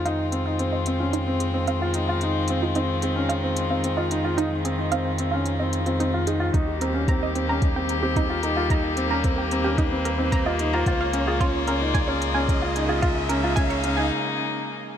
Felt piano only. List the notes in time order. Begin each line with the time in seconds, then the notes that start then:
0.06 D#4
0.32 C4
0.47 D#4
0.59 C4
0.87 C4
1.00 C#4
1.27 C4
1.54 C4
1.67 C4
1.82 F4
1.95 D#4
2.09 F4
2.23 D#4
2.50 C4
2.62 D#4
2.76 C4
3.03 C4
3.16 C#4
3.43 C4
3.70 C4
3.84 C4
3.97 F4
4.11 D#4
4.24 F4
4.37 D#4
4.65 C4
4.79 D#4
4.92 C4
5.19 C4
5.34 C#4
5.60 C4
5.86 C4
5.99 C4
6.14 F4
6.27 D#4
6.40 F4
6.53 D#4
6.81 C4
6.94 C#4
7.09 C4
7.35 C4
7.48 C#4
7.76 C4
8.03 C4
8.17 C4
8.30 F4
8.44 D#4
8.57 F4
8.70 D#4
8.97 C4
9.11 C#4
9.24 C4
9.52 C4
9.64 C#4
9.92 C4
10.18 C4
10.32 C4
10.46 F4
10.60 D#4
10.74 F4
10.87 F4
11.14 C#4
11.27 F4
11.41 C#4
11.68 C#4
11.81 D#4
12.08 C#4
12.35 C#4
12.49 C#4
12.62 F4
12.76 D#4
12.89 F4
13.02 F4
13.29 C#4
13.44 F4
13.57 C#4
13.84 C#4
13.98 D#4